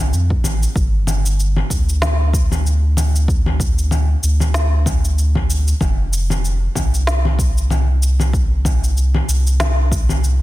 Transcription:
0.00 0.12 C2 medium
0.12 0.35 F2 loud
0.12 cabasa soft
0.30 kick medium
0.44 0.66 A1 medium
0.44 low conga medium
0.44 cabasa medium
0.63 cabasa soft
0.75 1.63 G1 loud
0.75 kick loud
0.75 cabasa soft
1.07 low conga medium
1.07 cabasa medium
1.26 cabasa soft
1.40 cabasa soft
1.57 low conga medium
1.70 4.15 D2 medium
1.70 kick medium
1.70 cabasa medium
1.89 cabasa soft
2.02 snare medium
2.02 low conga medium
2.02 cabasa soft
2.33 kick loud
2.33 cabasa medium
2.52 low conga medium
2.52 cabasa soft
2.66 cabasa soft
2.97 low conga medium
2.97 cabasa medium
3.16 cabasa soft
3.28 kick loud
3.28 cabasa soft
3.46 low conga medium
3.60 kick loud
3.60 cabasa medium
3.78 cabasa soft
3.91 low conga medium
3.91 cabasa soft
4.23 5.73 D2 medium
4.23 cabasa medium
4.40 low conga medium
4.40 cabasa soft
4.54 snare medium
4.54 cabasa soft
4.86 kick loud
4.86 low conga medium
4.86 cabasa medium
5.05 cabasa soft
5.18 cabasa soft
5.35 kick medium
5.35 low conga medium
5.50 cabasa medium
5.68 cabasa soft
5.81 6.68 F1 medium
5.81 kick loud
5.81 low conga medium
5.81 cabasa soft
6.13 cabasa medium
6.30 low conga medium
6.30 cabasa soft
6.45 cabasa soft
6.75 9.21 C2 medium
6.75 kick medium
6.75 low conga medium
6.75 cabasa medium
6.94 cabasa soft
7.07 snare medium
7.07 cabasa soft
7.25 low conga medium
7.39 kick loud
7.39 cabasa medium
7.58 cabasa soft
7.70 low conga medium
7.70 cabasa soft
8.03 cabasa medium
8.20 low conga medium
8.20 cabasa soft
8.33 kick loud
8.33 cabasa soft
8.65 kick loud
8.65 low conga medium
8.65 cabasa medium
8.84 cabasa soft
8.97 cabasa soft
9.15 low conga medium
9.28 10.42 C2 medium
9.28 cabasa medium
9.47 cabasa soft
9.60 snare medium
9.60 low conga medium
9.60 cabasa soft
9.92 kick loud
9.92 cabasa medium
10.09 low conga medium
10.09 cabasa soft
10.24 cabasa soft

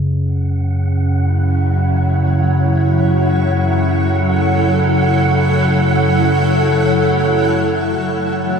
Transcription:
0.00 7.97 F#2 medium
0.00 7.97 C#3 medium
0.24 8.60 F#3 medium
0.24 7.92 F#5 medium
0.51 8.60 E4 medium
0.95 8.60 C#5 medium
3.17 8.60 A4 loud
7.93 8.60 F#5 medium
7.98 8.60 F#2 medium
7.98 8.60 C#3 medium

